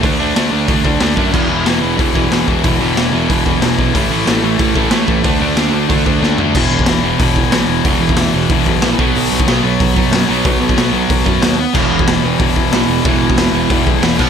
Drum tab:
CC |----------------|x---------------|----------------|----------------|
HH |o---o---o---o---|----o---o---o---|o---o---o---o---|o---o---o---o---|
SD |----o-------o---|----o-------o---|----o-------o---|----o-------o---|
FT |----------------|----------------|----------------|----------------|
BD |o-------o-o---o-|o-------o-o---o-|o-------o-o---o-|o-------o-o---o-|

CC |----------------|x---------------|----------------|----------------|
HH |o---o---o-------|----o---o---o---|o---o---o---o---|o---o---o---o---|
SD |----o-------o---|----o-------o---|----o-------o---|----o-------o---|
FT |--------------o-|----------------|----------------|----------------|
BD |o-------o-o-----|o--o----o-o-----|o--o----o-o---o-|---o----o-o-----|

CC |----------------|x---------------|--------------x-|
HH |o---o---o---o---|----o---o---o---|o---o---o---o---|
SD |----o-------o---|----o-------o---|----o-------o---|
FT |----------------|----------------|----------------|
BD |o--o----o-o-----|o--o----o-o-----|o--o----o-o---o-|